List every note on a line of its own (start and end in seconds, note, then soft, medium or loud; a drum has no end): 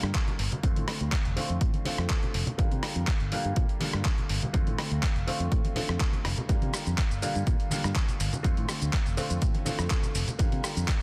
0.00 0.10 G2 medium
0.00 0.61 D3 medium
0.00 0.61 G3 medium
0.00 0.61 A#3 medium
0.00 0.61 F4 medium
0.00 cross-stick medium
0.15 kick loud
0.15 clap loud
0.15 closed hi-hat loud
0.27 closed hi-hat soft
0.27 tambourine soft
0.27 low conga medium
0.39 0.47 G1 medium
0.39 open hi-hat loud
0.39 tambourine medium
0.52 closed hi-hat soft
0.52 tambourine soft
0.52 low conga medium
0.63 0.72 F2 loud
0.63 1.34 D3 medium
0.63 1.34 A3 medium
0.63 1.34 C4 medium
0.63 1.35 F4 medium
0.63 kick loud
0.63 closed hi-hat medium
0.76 0.84 A2 medium
0.76 closed hi-hat soft
0.76 tambourine soft
0.76 high conga loud
0.88 cross-stick medium
0.88 open hi-hat loud
0.88 tambourine medium
1.01 1.08 D2 medium
1.01 closed hi-hat soft
1.12 kick loud
1.12 clap loud
1.12 closed hi-hat medium
1.25 1.36 F1 medium
1.25 closed hi-hat soft
1.36 1.83 D3 medium
1.36 1.83 A3 medium
1.36 1.83 C4 medium
1.36 1.83 F4 medium
1.36 muted fingered electric bass stroke soft
1.36 open hi-hat loud
1.50 1.57 F2 medium
1.50 closed hi-hat soft
1.61 1.69 A2 medium
1.61 kick loud
1.61 closed hi-hat medium
1.74 closed hi-hat soft
1.74 tambourine soft
1.74 high conga medium
1.85 2.56 D3 medium
1.85 2.56 A3 medium
1.85 2.56 C4 medium
1.85 2.56 F4 medium
1.85 open hi-hat loud
1.85 tambourine medium
1.85 high conga medium
1.85 low conga medium
1.98 2.05 F2 medium
1.98 cross-stick medium
2.10 kick loud
2.10 clap loud
2.10 closed hi-hat loud
2.22 closed hi-hat soft
2.22 tambourine soft
2.22 low conga medium
2.34 2.42 F1 medium
2.34 open hi-hat loud
2.34 tambourine medium
2.47 closed hi-hat soft
2.47 tambourine soft
2.47 low conga medium
2.58 2.67 G2 medium
2.58 3.29 D3 medium
2.58 3.29 G3 medium
2.58 3.29 A#3 medium
2.58 3.30 F4 medium
2.58 kick loud
2.58 closed hi-hat medium
2.71 2.79 C3 medium
2.71 closed hi-hat soft
2.71 tambourine soft
2.71 high conga medium
2.83 cross-stick medium
2.83 open hi-hat loud
2.83 tambourine medium
2.96 3.03 F2 medium
2.96 closed hi-hat soft
2.96 tambourine soft
3.07 kick loud
3.07 clap loud
3.07 closed hi-hat medium
3.20 3.32 G1 medium
3.20 closed hi-hat soft
3.32 3.78 D3 medium
3.32 3.78 G3 medium
3.32 3.78 A#3 medium
3.32 3.78 F4 loud
3.32 muted fingered electric bass stroke soft
3.32 open hi-hat loud
3.45 3.52 G2 medium
3.45 closed hi-hat soft
3.56 3.64 A#2 medium
3.56 kick loud
3.56 closed hi-hat medium
3.69 closed hi-hat soft
3.69 tambourine soft
3.80 4.51 D3 medium
3.80 4.51 G3 medium
3.80 4.52 A#3 medium
3.80 4.52 F4 medium
3.80 open hi-hat loud
3.80 tambourine medium
3.80 high conga medium
3.80 low conga medium
3.93 4.01 G2 medium
3.93 cross-stick medium
3.93 closed hi-hat soft
3.93 tambourine soft
4.05 kick loud
4.05 clap loud
4.05 closed hi-hat medium
4.18 closed hi-hat soft
4.18 tambourine soft
4.18 low conga medium
4.29 4.38 G1 medium
4.29 open hi-hat loud
4.29 tambourine medium
4.42 closed hi-hat soft
4.42 tambourine soft
4.42 low conga medium
4.53 4.62 F2 loud
4.53 5.24 D3 medium
4.53 5.24 A3 medium
4.53 5.24 C4 medium
4.53 5.25 F4 loud
4.53 kick loud
4.53 closed hi-hat medium
4.67 4.74 A2 medium
4.67 closed hi-hat soft
4.67 tambourine soft
4.67 high conga medium
4.78 cross-stick medium
4.78 open hi-hat loud
4.78 tambourine medium
4.91 4.98 D2 medium
4.91 closed hi-hat soft
4.91 tambourine soft
5.03 kick loud
5.03 clap loud
5.03 closed hi-hat medium
5.15 5.26 F1 medium
5.15 closed hi-hat soft
5.15 tambourine soft
5.27 5.73 D3 medium
5.27 5.73 A3 medium
5.27 5.73 C4 medium
5.27 5.73 F4 loud
5.27 muted fingered electric bass stroke soft
5.27 open hi-hat loud
5.27 tambourine medium
5.40 5.47 F2 medium
5.40 closed hi-hat soft
5.40 tambourine soft
5.52 5.60 A2 loud
5.52 kick loud
5.52 closed hi-hat medium
5.64 closed hi-hat soft
5.64 tambourine soft
5.64 high conga medium
5.75 6.46 D3 medium
5.75 6.46 A3 medium
5.75 6.47 C4 medium
5.75 6.47 F4 medium
5.75 open hi-hat loud
5.75 tambourine medium
5.75 high conga loud
5.75 low conga medium
5.89 5.96 F2 medium
5.89 cross-stick medium
5.89 closed hi-hat soft
6.00 kick loud
6.00 clap loud
6.00 closed hi-hat medium
6.13 closed hi-hat soft
6.13 tambourine soft
6.13 low conga medium
6.25 6.33 F1 medium
6.25 cross-stick medium
6.25 open hi-hat loud
6.25 tambourine medium
6.37 closed hi-hat soft
6.37 tambourine soft
6.37 low conga medium
6.49 6.57 G2 loud
6.49 7.19 D3 medium
6.49 7.20 G3 medium
6.49 7.20 A#3 medium
6.49 7.20 F4 medium
6.49 kick loud
6.49 closed hi-hat medium
6.49 shaker soft
6.62 6.69 C3 medium
6.62 closed hi-hat soft
6.62 tambourine soft
6.62 high conga medium
6.73 cross-stick medium
6.73 open hi-hat loud
6.73 tambourine medium
6.73 shaker medium
6.86 6.94 F2 medium
6.86 closed hi-hat soft
6.86 tambourine soft
6.86 shaker soft
6.98 kick loud
6.98 clap loud
6.98 closed hi-hat medium
6.98 shaker soft
7.11 7.22 G1 medium
7.11 closed hi-hat soft
7.11 tambourine soft
7.11 shaker soft
7.22 7.68 D3 medium
7.22 7.68 G3 medium
7.22 7.68 A#3 medium
7.22 7.69 F4 loud
7.22 muted fingered electric bass stroke soft
7.22 open hi-hat loud
7.22 tambourine medium
7.22 shaker medium
7.35 7.42 G2 medium
7.35 closed hi-hat soft
7.35 tambourine soft
7.35 shaker soft
7.47 7.55 A#2 medium
7.47 kick loud
7.47 closed hi-hat medium
7.47 shaker soft
7.60 closed hi-hat soft
7.60 tambourine soft
7.70 8.41 D3 medium
7.70 8.41 G3 medium
7.70 8.42 A#3 medium
7.70 8.42 F4 medium
7.70 open hi-hat loud
7.70 tambourine medium
7.70 high conga medium
7.70 low conga medium
7.70 shaker medium
7.84 7.91 G2 medium
7.84 cross-stick medium
7.84 closed hi-hat soft
7.84 tambourine soft
7.84 shaker soft
7.96 kick loud
7.96 clap loud
7.96 closed hi-hat medium
7.96 shaker soft
8.08 closed hi-hat soft
8.08 tambourine soft
8.08 low conga medium
8.08 shaker soft
8.20 8.28 G1 medium
8.20 open hi-hat loud
8.20 tambourine medium
8.20 shaker medium
8.33 closed hi-hat soft
8.33 tambourine soft
8.33 low conga medium
8.33 shaker soft
8.43 8.52 F2 loud
8.43 9.14 D3 medium
8.43 9.14 A3 medium
8.43 9.15 C4 medium
8.43 9.15 F4 loud
8.43 kick loud
8.43 closed hi-hat medium
8.43 shaker soft
8.57 8.64 A2 medium
8.57 closed hi-hat soft
8.57 tambourine soft
8.57 high conga medium
8.69 cross-stick medium
8.69 open hi-hat loud
8.69 tambourine loud
8.69 shaker medium
8.82 8.89 D2 medium
8.82 closed hi-hat soft
8.82 tambourine soft
8.82 shaker soft
8.93 kick loud
8.93 clap loud
8.93 closed hi-hat medium
8.93 shaker soft
9.06 9.17 F1 medium
9.06 closed hi-hat soft
9.06 tambourine soft
9.06 shaker soft
9.17 9.63 D3 medium
9.17 9.63 A3 medium
9.17 9.64 C4 medium
9.17 9.64 F4 medium
9.17 muted fingered electric bass stroke soft
9.17 open hi-hat loud
9.17 tambourine medium
9.17 shaker medium
9.30 9.37 F2 medium
9.30 closed hi-hat soft
9.30 tambourine soft
9.30 shaker soft
9.41 9.50 A2 medium
9.41 kick loud
9.41 closed hi-hat medium
9.41 tambourine medium
9.41 shaker soft
9.54 closed hi-hat soft
9.54 tambourine soft
9.54 high conga medium
9.65 10.36 D3 medium
9.65 10.36 A3 medium
9.65 10.37 C4 medium
9.65 10.37 F4 medium
9.65 open hi-hat loud
9.65 tambourine medium
9.65 high conga medium
9.65 low conga medium
9.65 shaker medium
9.79 9.86 F2 medium
9.79 cross-stick medium
9.79 shaker soft
9.90 kick loud
9.90 clap loud
9.90 closed hi-hat medium
9.90 shaker soft
10.03 closed hi-hat soft
10.03 tambourine soft
10.03 low conga medium
10.03 shaker soft
10.15 10.23 F1 medium
10.15 open hi-hat loud
10.15 tambourine loud
10.15 shaker medium
10.28 closed hi-hat soft
10.28 tambourine soft
10.28 low conga medium
10.28 shaker soft
10.39 10.47 G2 loud
10.39 11.02 D3 medium
10.39 11.02 G3 medium
10.39 11.02 A#3 medium
10.39 11.02 F4 medium
10.39 kick loud
10.39 closed hi-hat medium
10.39 shaker soft
10.52 10.59 C3 medium
10.52 closed hi-hat soft
10.52 tambourine soft
10.52 high conga medium
10.64 cross-stick medium
10.64 open hi-hat loud
10.64 tambourine medium
10.64 shaker medium
10.77 10.84 F2 medium
10.77 closed hi-hat soft
10.77 tambourine soft
10.77 shaker soft
10.88 kick loud
10.88 clap loud
10.88 closed hi-hat medium
10.88 shaker soft